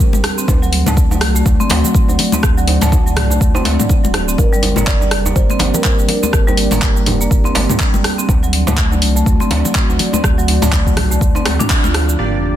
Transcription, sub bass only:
0, 0, Header, 1, 2, 480
1, 0, Start_track
1, 0, Tempo, 487805
1, 474, Time_signature, 4, 2, 24, 8
1, 12362, End_track
2, 0, Start_track
2, 0, Title_t, "Sub bass"
2, 0, Program_c, 0, 38
2, 135, Note_on_c, 0, 31, 86
2, 219, Note_off_c, 0, 31, 0
2, 474, Note_on_c, 0, 38, 99
2, 817, Note_off_c, 0, 38, 0
2, 854, Note_on_c, 0, 38, 94
2, 1195, Note_on_c, 0, 36, 99
2, 1209, Note_off_c, 0, 38, 0
2, 1402, Note_off_c, 0, 36, 0
2, 1434, Note_on_c, 0, 38, 108
2, 1551, Note_off_c, 0, 38, 0
2, 1675, Note_on_c, 0, 38, 99
2, 1791, Note_off_c, 0, 38, 0
2, 2052, Note_on_c, 0, 38, 86
2, 2137, Note_off_c, 0, 38, 0
2, 2394, Note_on_c, 0, 38, 99
2, 2737, Note_off_c, 0, 38, 0
2, 2773, Note_on_c, 0, 38, 94
2, 3116, Note_on_c, 0, 36, 101
2, 3131, Note_off_c, 0, 38, 0
2, 3322, Note_off_c, 0, 36, 0
2, 3355, Note_on_c, 0, 38, 102
2, 3471, Note_off_c, 0, 38, 0
2, 3595, Note_on_c, 0, 38, 100
2, 3711, Note_off_c, 0, 38, 0
2, 3971, Note_on_c, 0, 26, 83
2, 4287, Note_off_c, 0, 26, 0
2, 4315, Note_on_c, 0, 31, 99
2, 4657, Note_off_c, 0, 31, 0
2, 4693, Note_on_c, 0, 31, 89
2, 5033, Note_on_c, 0, 29, 104
2, 5047, Note_off_c, 0, 31, 0
2, 5241, Note_off_c, 0, 29, 0
2, 5274, Note_on_c, 0, 31, 104
2, 5390, Note_off_c, 0, 31, 0
2, 5511, Note_on_c, 0, 31, 98
2, 5629, Note_off_c, 0, 31, 0
2, 5890, Note_on_c, 0, 31, 87
2, 5976, Note_off_c, 0, 31, 0
2, 6232, Note_on_c, 0, 31, 97
2, 6576, Note_off_c, 0, 31, 0
2, 6611, Note_on_c, 0, 31, 94
2, 6953, Note_on_c, 0, 29, 99
2, 6967, Note_off_c, 0, 31, 0
2, 7161, Note_off_c, 0, 29, 0
2, 7192, Note_on_c, 0, 31, 109
2, 7310, Note_off_c, 0, 31, 0
2, 7432, Note_on_c, 0, 31, 102
2, 7549, Note_off_c, 0, 31, 0
2, 7814, Note_on_c, 0, 31, 87
2, 7898, Note_off_c, 0, 31, 0
2, 8155, Note_on_c, 0, 38, 94
2, 8497, Note_off_c, 0, 38, 0
2, 8532, Note_on_c, 0, 38, 95
2, 8875, Note_on_c, 0, 36, 100
2, 8889, Note_off_c, 0, 38, 0
2, 9082, Note_off_c, 0, 36, 0
2, 9115, Note_on_c, 0, 38, 105
2, 9231, Note_off_c, 0, 38, 0
2, 9354, Note_on_c, 0, 38, 101
2, 9471, Note_off_c, 0, 38, 0
2, 9732, Note_on_c, 0, 38, 88
2, 9817, Note_off_c, 0, 38, 0
2, 10075, Note_on_c, 0, 38, 99
2, 10417, Note_off_c, 0, 38, 0
2, 10452, Note_on_c, 0, 38, 89
2, 10795, Note_on_c, 0, 36, 100
2, 10810, Note_off_c, 0, 38, 0
2, 11002, Note_off_c, 0, 36, 0
2, 11032, Note_on_c, 0, 38, 104
2, 11150, Note_off_c, 0, 38, 0
2, 11277, Note_on_c, 0, 38, 91
2, 11392, Note_off_c, 0, 38, 0
2, 11652, Note_on_c, 0, 38, 82
2, 11968, Note_off_c, 0, 38, 0
2, 11993, Note_on_c, 0, 31, 82
2, 12362, Note_off_c, 0, 31, 0
2, 12362, End_track
0, 0, End_of_file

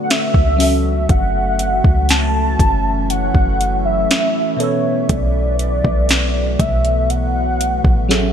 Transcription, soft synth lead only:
0, 0, Header, 1, 2, 480
1, 0, Start_track
1, 0, Tempo, 1000000
1, 525, Time_signature, 4, 2, 24, 8
1, 3997, End_track
2, 0, Start_track
2, 0, Title_t, "Soft synth lead"
2, 0, Program_c, 0, 80
2, 14, Note_on_c, 0, 78, 81
2, 48, Note_on_c, 0, 76, 114
2, 55, Note_off_c, 0, 78, 0
2, 525, Note_off_c, 0, 76, 0
2, 528, Note_on_c, 0, 78, 121
2, 987, Note_off_c, 0, 78, 0
2, 1007, Note_on_c, 0, 81, 127
2, 1467, Note_off_c, 0, 81, 0
2, 1486, Note_on_c, 0, 78, 116
2, 1826, Note_off_c, 0, 78, 0
2, 1846, Note_on_c, 0, 76, 110
2, 2206, Note_on_c, 0, 73, 89
2, 2214, Note_off_c, 0, 76, 0
2, 2447, Note_on_c, 0, 74, 109
2, 2454, Note_off_c, 0, 73, 0
2, 3167, Note_on_c, 0, 76, 88
2, 3174, Note_off_c, 0, 74, 0
2, 3407, Note_on_c, 0, 78, 110
2, 3415, Note_off_c, 0, 76, 0
2, 3997, Note_off_c, 0, 78, 0
2, 3997, End_track
0, 0, End_of_file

